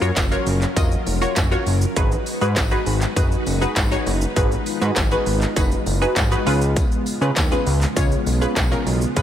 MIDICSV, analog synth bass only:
0, 0, Header, 1, 2, 480
1, 0, Start_track
1, 0, Tempo, 600000
1, 1572, Time_signature, 4, 2, 24, 8
1, 7377, End_track
2, 0, Start_track
2, 0, Title_t, "Analog synth bass"
2, 0, Program_c, 0, 38
2, 13, Note_on_c, 0, 42, 99
2, 89, Note_off_c, 0, 42, 0
2, 133, Note_on_c, 0, 30, 97
2, 285, Note_off_c, 0, 30, 0
2, 372, Note_on_c, 0, 30, 99
2, 524, Note_off_c, 0, 30, 0
2, 612, Note_on_c, 0, 29, 99
2, 764, Note_off_c, 0, 29, 0
2, 852, Note_on_c, 0, 29, 86
2, 1004, Note_off_c, 0, 29, 0
2, 1092, Note_on_c, 0, 30, 95
2, 1244, Note_off_c, 0, 30, 0
2, 1332, Note_on_c, 0, 30, 91
2, 1484, Note_off_c, 0, 30, 0
2, 1571, Note_on_c, 0, 32, 111
2, 1724, Note_off_c, 0, 32, 0
2, 1932, Note_on_c, 0, 44, 94
2, 2052, Note_on_c, 0, 32, 96
2, 2064, Note_off_c, 0, 44, 0
2, 2204, Note_off_c, 0, 32, 0
2, 2291, Note_on_c, 0, 32, 102
2, 2444, Note_off_c, 0, 32, 0
2, 2531, Note_on_c, 0, 30, 94
2, 2684, Note_off_c, 0, 30, 0
2, 2771, Note_on_c, 0, 30, 91
2, 2924, Note_off_c, 0, 30, 0
2, 3012, Note_on_c, 0, 32, 92
2, 3164, Note_off_c, 0, 32, 0
2, 3251, Note_on_c, 0, 30, 103
2, 3404, Note_off_c, 0, 30, 0
2, 3491, Note_on_c, 0, 32, 116
2, 3644, Note_off_c, 0, 32, 0
2, 3851, Note_on_c, 0, 44, 107
2, 3928, Note_off_c, 0, 44, 0
2, 3971, Note_on_c, 0, 32, 104
2, 4124, Note_off_c, 0, 32, 0
2, 4212, Note_on_c, 0, 32, 97
2, 4364, Note_off_c, 0, 32, 0
2, 4451, Note_on_c, 0, 30, 96
2, 4603, Note_off_c, 0, 30, 0
2, 4691, Note_on_c, 0, 30, 100
2, 4843, Note_off_c, 0, 30, 0
2, 4931, Note_on_c, 0, 32, 89
2, 5083, Note_off_c, 0, 32, 0
2, 5171, Note_on_c, 0, 37, 111
2, 5476, Note_off_c, 0, 37, 0
2, 5770, Note_on_c, 0, 49, 89
2, 5847, Note_off_c, 0, 49, 0
2, 5893, Note_on_c, 0, 39, 97
2, 6045, Note_off_c, 0, 39, 0
2, 6131, Note_on_c, 0, 37, 95
2, 6284, Note_off_c, 0, 37, 0
2, 6372, Note_on_c, 0, 37, 96
2, 6524, Note_off_c, 0, 37, 0
2, 6612, Note_on_c, 0, 35, 87
2, 6764, Note_off_c, 0, 35, 0
2, 6852, Note_on_c, 0, 35, 101
2, 7004, Note_off_c, 0, 35, 0
2, 7091, Note_on_c, 0, 35, 97
2, 7244, Note_off_c, 0, 35, 0
2, 7332, Note_on_c, 0, 37, 120
2, 7377, Note_off_c, 0, 37, 0
2, 7377, End_track
0, 0, End_of_file